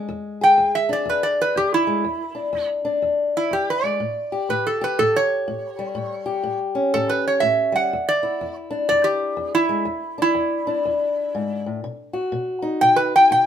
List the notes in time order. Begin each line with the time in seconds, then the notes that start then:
Already playing: G#3
0.09 E2
0.41 G#4 G5
0.58 E2
0.75 E5
0.89 D4 D5
1.06 E2
1.10 B4
1.23 D5
1.42 B4
1.56 E2 G4
1.74 E4
1.87 G#3
2.05 E2
2.35 D4
2.53 E2
2.85 D4
3.02 E2
3.37 E4
3.51 E2 G4
3.70 B4
3.84 G#3 D5
4.00 A2
4.32 G4
4.49 A2 B4
4.67 A4
4.81 G4 B4
4.99 A2 A4
5.16 C#5
5.48 A2
5.79 G3
5.95 A2
6.26 G4
6.44 A2
6.75 C#4
6.94 A2 A4
7.09 B4
7.28 C#5
7.40 A2 E5
7.72 G3 F#5
7.93 E2
8.09 D5
8.23 E4
8.41 E2
8.71 D4
8.89 E2 D5
9.04 G4
9.37 E2
9.55 E4
9.69 G#3
9.85 E2
10.18 D4 E4
10.35 E2
10.67 D4
10.85 E2
11.35 G#2
11.66 A2
11.84 B2
12.13 F#4
12.32 B2
12.62 D#4
12.81 B2 G5
12.96 B4
13.16 G5
13.31 B2 G5